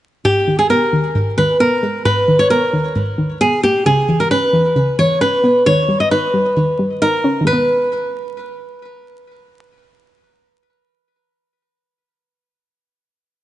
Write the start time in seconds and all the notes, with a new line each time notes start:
0.25 G#2 G4
0.47 D#3
0.59 G#4
0.70 B3 A#4
0.93 D#3
1.15 G#2
1.37 D#3 B4
1.60 B3 A#4
1.83 G#3
2.05 G#2 B4
2.28 D#3
2.39 C#5
2.50 B3 A#4
2.73 D#3
2.96 G#2
3.18 D#3
3.41 B3 G#4
3.63 A#3 G4
3.86 C#3 G#4
4.08 E3
4.20 A#4
4.31 C#4 B4
4.53 E3
4.76 C#3
4.99 E3 C#5
5.21 C#4 B4
5.44 B3
5.66 D#3 C#5
5.88 G3
6.00 D#5
6.11 D#4 B4
6.34 G3
6.57 D#3
6.79 G3
7.02 D#4 A#4
7.24 C#4
7.41 D#3
7.45 G#3 B4
7.53 B3